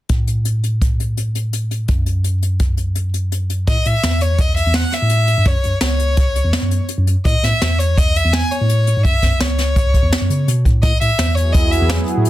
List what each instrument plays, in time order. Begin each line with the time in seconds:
0.09 tine electric piano A2, kick, closed hi-hat
0.27 closed hi-hat
0.45 closed hi-hat
0.64 closed hi-hat
0.82 kick, closed hi-hat
1.00 closed hi-hat
1.17 closed hi-hat
1.35 closed hi-hat
1.53 closed hi-hat
1.71 closed hi-hat
1.88 tine electric piano F#2, kick, closed hi-hat
2.06 closed hi-hat
2.24 closed hi-hat
2.42 closed hi-hat
2.60 kick, closed hi-hat
2.77 closed hi-hat
2.95 closed hi-hat
3.14 closed hi-hat
3.32 closed hi-hat
3.50 closed hi-hat
3.67 tine electric piano A2, violin D#5, kick, closed hi-hat
3.85 tine electric piano A2, violin E5, closed hi-hat
4.03 tine electric piano E2, snare, closed hi-hat
4.21 violin C#5, closed hi-hat
4.38 violin D#5, kick, closed hi-hat
4.56 violin E5, closed hi-hat
4.66 tine electric piano E2
4.74 violin F#5, snare, closed hi-hat
4.92 violin E5, snare, closed hi-hat
5.02 tine electric piano A2
5.10 closed hi-hat
5.28 closed hi-hat
5.38 tine electric piano G2
5.45 tine electric piano F#2, violin C#5, kick, closed hi-hat
5.64 tine electric piano F#2, closed hi-hat
5.81 tine electric piano C#2, violin C#5, snare, closed hi-hat
5.99 closed hi-hat
6.17 kick, closed hi-hat
6.35 closed hi-hat
6.45 tine electric piano E2
6.53 snare, closed hi-hat
6.62 tine electric piano F#2
6.71 closed hi-hat
6.89 closed hi-hat
6.98 tine electric piano F#2
7.07 closed hi-hat
7.25 tine electric piano A2, violin D#5, kick, closed hi-hat
7.43 tine electric piano A2, violin E5, snare, closed hi-hat
7.61 tine electric piano E2, snare, closed hi-hat
7.79 violin C#5, closed hi-hat
7.97 violin D#5, kick, closed hi-hat
8.16 violin E5, closed hi-hat
8.24 tine electric piano E2
8.33 violin G#5, snare, closed hi-hat
8.51 violin C#5, closed hi-hat
8.61 tine electric piano A2
8.69 closed hi-hat
8.87 closed hi-hat
8.97 tine electric piano G#2
9.05 tine electric piano F#2, violin E5, kick, closed hi-hat
9.22 tine electric piano F#2, kick, snare, closed hi-hat
9.40 tine electric piano C#2, violin C#5, snare, closed hi-hat
9.58 snare, closed hi-hat
9.76 kick, closed hi-hat
9.94 kick, closed hi-hat
10.03 tine electric piano E2
10.12 snare, closed hi-hat
10.21 tine electric piano F#2
10.30 tine electric piano C#3, closed hi-hat
10.48 tine electric piano B2, closed hi-hat
10.65 tine electric piano A2, kick, closed hi-hat
10.83 tine electric piano A2, violin D#5, kick, closed hi-hat
11.00 tine electric piano A2, violin E5, closed hi-hat
11.19 tine electric piano E2, snare, closed hi-hat
11.35 analog synth pad F#3 B3 E4 G#4, violin C#5, closed hi-hat
11.52 violin D#5, kick, closed hi-hat
11.71 violin E5, closed hi-hat
11.81 tine electric piano E2
11.90 snare, closed hi-hat
12.07 analog synth pad F#3 B3 E4 G#4, closed hi-hat
12.17 tine electric piano A2
12.25 closed hi-hat